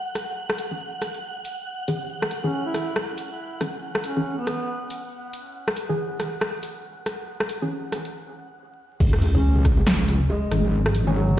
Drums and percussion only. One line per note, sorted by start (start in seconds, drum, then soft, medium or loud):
0.15 cross-stick soft
0.15 closed hi-hat medium
0.50 cross-stick medium
0.58 closed hi-hat medium
1.02 cross-stick soft
1.02 closed hi-hat medium
1.14 closed hi-hat soft
1.45 closed hi-hat medium
1.88 closed hi-hat medium
2.22 cross-stick medium
2.31 closed hi-hat medium
2.74 cross-stick soft
2.74 closed hi-hat medium
2.96 cross-stick medium
3.18 closed hi-hat medium
3.61 cross-stick soft
3.61 closed hi-hat medium
3.95 cross-stick medium
4.04 closed hi-hat medium
4.47 cross-stick medium
4.47 closed hi-hat medium
4.90 closed hi-hat medium
5.33 closed hi-hat medium
5.68 cross-stick medium
5.76 closed hi-hat medium
6.20 cross-stick medium
6.20 closed hi-hat medium
6.41 cross-stick medium
6.63 closed hi-hat medium
7.06 cross-stick medium
7.06 closed hi-hat medium
7.40 cross-stick medium
7.49 closed hi-hat medium
7.92 cross-stick soft
7.92 closed hi-hat medium
8.05 closed hi-hat soft
9.00 kick loud
9.00 crash loud
9.00 high bongo medium
9.13 cross-stick medium
9.22 closed hi-hat medium
9.22 high bongo medium
9.35 low conga medium
9.56 high bongo medium
9.56 high conga loud
9.56 low conga medium
9.65 kick loud
9.65 cross-stick medium
9.65 closed hi-hat medium
9.77 high bongo medium
9.77 low conga loud
9.87 cross-stick medium
9.87 snare loud
10.08 closed hi-hat medium
10.08 high bongo medium
10.08 high conga medium
10.30 high bongo medium
10.51 cross-stick medium
10.51 closed hi-hat medium
10.63 high bongo medium
10.63 high conga medium
10.86 cross-stick medium
10.86 high bongo medium
10.95 closed hi-hat medium
11.07 low conga loud
11.16 high bongo medium
11.29 high conga medium
11.29 low conga medium